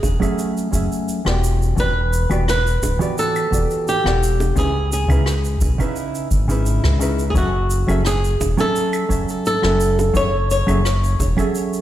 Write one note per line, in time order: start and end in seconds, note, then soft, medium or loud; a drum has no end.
0.00 0.19 E1 loud
0.00 1.40 G#4 medium
0.00 kick loud
0.00 high bongo medium
0.00 shaker medium
0.20 0.68 F#3 medium
0.20 0.69 A3 medium
0.20 0.69 C#4 medium
0.20 0.69 G#4 medium
0.20 0.70 E5 medium
0.20 kick medium
0.20 claves soft
0.20 shaker soft
0.39 shaker medium
0.57 shaker soft
0.72 0.89 F#1 medium
0.72 1.21 F#3 medium
0.72 1.22 A3 medium
0.72 1.22 C#4 medium
0.72 1.22 G#4 medium
0.72 1.23 E5 medium
0.72 kick loud
0.72 shaker medium
0.92 shaker medium
1.08 shaker medium
1.25 1.74 E1 medium
1.25 1.73 E3 medium
1.25 1.73 B3 medium
1.25 1.74 F#4 medium
1.25 1.74 G4 medium
1.25 1.75 D5 medium
1.25 cross-stick medium
1.44 shaker medium
1.62 shaker soft
1.76 2.26 E1 loud
1.76 1.91 E3 medium
1.76 1.91 B3 medium
1.76 1.92 F#4 medium
1.76 1.92 G4 medium
1.76 2.48 B4 loud
1.76 1.93 D5 medium
1.76 kick loud
1.76 shaker soft
2.13 shaker medium
2.30 2.78 E1 medium
2.30 2.43 E3 medium
2.30 2.43 B3 medium
2.30 2.44 F#4 medium
2.30 2.44 G4 medium
2.30 2.44 D5 medium
2.30 claves medium
2.30 shaker soft
2.48 3.14 B4 loud
2.48 cross-stick medium
2.48 shaker medium
2.67 shaker soft
2.82 2.98 D1 loud
2.82 kick medium
2.82 high bongo medium
2.82 shaker medium
2.99 3.47 E3 medium
2.99 3.48 B3 medium
2.99 3.48 F#4 medium
2.99 3.49 G4 medium
2.99 3.49 D5 loud
2.99 shaker soft
3.18 3.88 A4 medium
3.18 shaker medium
3.36 claves medium
3.36 shaker soft
3.51 3.68 E1 medium
3.51 4.00 E3 medium
3.51 4.01 B3 medium
3.51 4.01 F#4 medium
3.51 4.02 G4 medium
3.51 4.02 D5 medium
3.51 kick loud
3.51 shaker medium
3.70 shaker medium
3.88 4.58 G4 medium
3.88 shaker medium
4.04 4.53 E1 medium
4.04 4.52 E3 medium
4.04 4.53 B3 medium
4.04 4.53 G4 medium
4.04 4.54 D5 medium
4.04 4.53 F#5 medium
4.04 cross-stick medium
4.23 shaker medium
4.40 high bongo medium
4.40 shaker medium
4.56 5.05 C#2 loud
4.56 4.70 C#3 medium
4.56 4.70 C#4 medium
4.56 4.71 D#4 medium
4.56 4.71 E4 medium
4.56 4.92 G#4 medium
4.56 4.72 B4 medium
4.56 kick loud
4.56 shaker medium
4.92 5.58 G#4 medium
4.92 shaker medium
5.08 5.57 C#2 medium
5.08 5.22 C#3 medium
5.08 5.22 C#4 medium
5.08 5.23 D#4 medium
5.08 5.23 E4 medium
5.08 5.23 B4 medium
5.08 claves medium
5.08 shaker soft
5.26 cross-stick medium
5.26 shaker soft
5.44 shaker soft
5.61 5.77 B1 loud
5.61 kick loud
5.61 high bongo medium
5.61 shaker medium
5.78 6.27 C#3 medium
5.78 6.27 C#4 medium
5.78 6.27 D#4 medium
5.78 6.28 E4 medium
5.78 6.28 B4 medium
5.78 kick medium
5.78 claves medium
5.78 shaker soft
5.96 shaker medium
6.15 shaker soft
6.31 6.80 G#1 medium
6.31 kick loud
6.31 shaker medium
6.48 6.96 C#3 medium
6.48 6.97 C#4 medium
6.48 6.97 D#4 medium
6.48 6.97 E4 medium
6.48 6.98 B4 medium
6.48 shaker medium
6.66 shaker medium
6.84 7.32 C#2 medium
6.84 cross-stick medium
6.99 7.22 C#3 medium
6.99 7.22 C#4 medium
6.99 7.23 D#4 medium
6.99 7.23 E4 medium
6.99 7.24 B4 medium
6.99 shaker medium
7.19 shaker soft
7.30 7.36 G#4 medium
7.34 7.84 F#1 loud
7.34 7.49 F#3 medium
7.34 7.49 C#4 medium
7.34 8.06 F#4 medium
7.34 7.50 G#4 medium
7.34 7.50 A4 medium
7.34 7.51 E5 medium
7.34 kick loud
7.34 shaker medium
7.70 shaker medium
7.88 8.36 F#1 medium
7.88 8.01 F#3 medium
7.88 8.01 C#4 medium
7.88 8.02 G#4 medium
7.88 8.02 A4 medium
7.88 8.03 E5 medium
7.88 claves medium
7.88 shaker medium
8.05 8.60 G#4 medium
8.05 cross-stick medium
8.05 shaker medium
8.24 shaker soft
8.40 8.56 E1 loud
8.40 kick medium
8.40 high bongo medium
8.40 shaker medium
8.57 9.06 F#3 medium
8.57 9.06 C#4 medium
8.57 9.07 A4 medium
8.57 9.46 A4 medium
8.57 9.07 E5 medium
8.57 9.07 G#5 medium
8.57 shaker soft
8.76 shaker medium
8.93 claves medium
8.93 shaker soft
9.09 9.26 F#1 medium
9.09 9.58 F#3 medium
9.09 9.59 C#4 medium
9.09 9.60 A4 medium
9.09 9.60 E5 medium
9.09 9.59 G#5 medium
9.09 kick loud
9.09 shaker medium
9.29 shaker soft
9.46 10.16 A4 medium
9.46 shaker medium
9.62 10.11 F#1 medium
9.62 10.10 F#3 medium
9.62 10.11 C#4 medium
9.62 10.12 A4 medium
9.62 10.12 E5 medium
9.62 10.11 G#5 medium
9.62 cross-stick medium
9.80 shaker medium
9.99 high bongo medium
9.99 shaker medium
10.13 10.64 F#1 medium
10.13 10.28 F#3 medium
10.13 10.29 C#4 medium
10.13 10.29 G#4 medium
10.13 10.29 A4 medium
10.13 10.50 C#5 loud
10.13 10.30 E5 medium
10.13 kick loud
10.13 shaker medium
10.50 11.81 C#5 loud
10.50 shaker medium
10.67 11.16 F#1 medium
10.67 10.80 F#3 medium
10.67 10.80 C#4 medium
10.67 10.81 G#4 medium
10.67 10.81 A4 medium
10.67 10.82 E5 medium
10.67 claves medium
10.67 shaker soft
10.85 cross-stick medium
10.85 shaker medium
11.04 shaker soft
11.20 11.35 E1 loud
11.20 kick medium
11.20 high bongo medium
11.20 shaker medium
11.37 11.81 F#3 medium
11.37 11.81 C#4 medium
11.37 11.81 G#4 medium
11.37 11.81 A4 medium
11.37 11.81 E5 medium
11.37 kick medium
11.37 claves medium
11.37 shaker soft
11.55 shaker soft
11.73 shaker soft